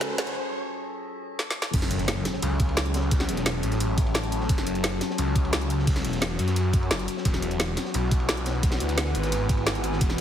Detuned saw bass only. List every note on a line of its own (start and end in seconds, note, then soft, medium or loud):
0.00 0.36 C#2 loud
1.74 2.24 F#1 loud
2.43 3.27 C#2 loud
3.29 3.62 E1 loud
3.63 4.48 A1 loud
4.49 5.00 F#1 medium
5.18 6.03 C#2 loud
6.05 6.38 E1 loud
6.39 6.89 F#2 loud
6.91 7.07 F#1 loud
7.25 7.76 E1 loud
7.94 8.79 B1 loud
8.80 9.14 D2 loud
9.15 10.00 G#1 loud
10.01 10.21 E1 loud